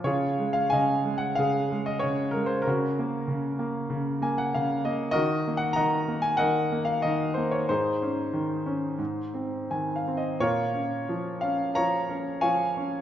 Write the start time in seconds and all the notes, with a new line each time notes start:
0.04 C#3 F4 G#4 C#5
0.39 G#3
0.53 F5
0.70 C#3 D#5 F5 G#5
1.05 G#3
1.18 F#5
1.35 C#3 F5
1.40 G#4
1.72 G#3
1.86 D#5
1.99 C#3 C#5
2.31 G#3 A#4
2.46 C5
2.62 A#4
2.66 C#3 C#4 F#4
2.99 A#3
3.28 C#3
3.59 A#3
3.90 C#3
4.22 A#3 G#5
4.38 F#5
4.55 C#3 F5
4.85 A#3 D#5
5.11 D#3 F#4 A#4 D#5
5.48 A#3
5.57 F#5
5.73 D#5 F#5 A#5
5.77 D#3
6.08 A#3
6.22 G#5
6.37 D#3 A#4 D#5 F#5
6.72 A#3
6.85 F5
7.02 D#3 D#5
7.34 A#3 C5
7.51 C#5
7.69 G#2 D#4 G#4 C5
8.02 C#4
8.33 D#3
8.66 C#4
8.99 G#2
9.34 C4
9.71 D#3 G#5
9.96 F5
10.08 C4
10.17 D#5
10.40 A#2 F4 A#4 C#5
10.74 C#4
11.09 F3
11.41 C#4 F5
11.75 F3 C#5 F5 A#5
12.09 C#4
12.41 F3 C#5 F5 G#5
12.77 C#4